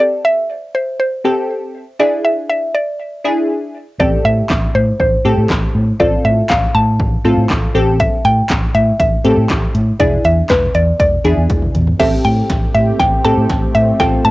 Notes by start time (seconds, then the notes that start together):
Already playing: C4 G4 A4
0.00 D5
0.25 E5
0.75 C5
1.00 C5
1.25 C4 G4 A4
1.99 D4 E4 G#4 D5
2.25 E5
2.50 E5
2.75 D5
3.25 D4 E4 G#4
4.00 A1 C4 G4 A4 D5, kick
4.25 A2 E5
4.50 A1, kick, snare, clap
4.75 A2 C5
5.00 A1 C5, kick
5.25 A2 C4 G4 A4
5.37 A2
5.50 A1, kick, snare, clap
5.75 A2
5.99 A1 C4 F4 A4 D5, kick
6.25 A2 E5
6.50 A1 F5, kick, snare, clap
6.75 A2 A5
7.00 A1, kick
7.25 A2 C4 F4 A4
7.37 A2
7.50 A1, kick, snare, clap
7.75 A1 C4 G4 A4
8.00 E5, kick, closed hi-hat
8.25 A2 G5, closed hi-hat
8.50 A1, kick, snare, clap, closed hi-hat
8.75 A2 E5, closed hi-hat
9.00 A1 E5, kick, closed hi-hat
9.24 A2 C4 G4 A4, closed hi-hat
9.37 A2
9.50 A1, kick, snare, clap, closed hi-hat
9.75 A2, closed hi-hat
9.99 E1 D4 E4 G#4 D5, kick, closed hi-hat
10.25 E2 E5, closed hi-hat
10.50 E1 B4, kick, snare, clap, closed hi-hat
10.75 E2 D5, closed hi-hat
11.00 E1 D5, kick, closed hi-hat
11.24 E2 D4 E4 G#4, closed hi-hat
11.37 E2
11.50 E1, kick, closed hi-hat, high tom
11.62 mid tom
11.75 E2, closed hi-hat, mid tom
11.87 floor tom
11.99 A1 A3 C4 G4 A4 E5, kick, snare, closed hi-hat, crash
12.25 A2 G5, closed hi-hat
12.50 A1, kick, snare, closed hi-hat
12.75 A2 E5, closed hi-hat
13.00 A1 G5, kick, snare, closed hi-hat
13.25 A2 C4 G4 A4 A5, closed hi-hat
13.37 A2
13.50 A1, kick, snare, closed hi-hat
13.75 A2 E5, closed hi-hat
14.00 A1 C4 F4 A4 G5, kick, snare, closed hi-hat
14.25 A2 A5, closed hi-hat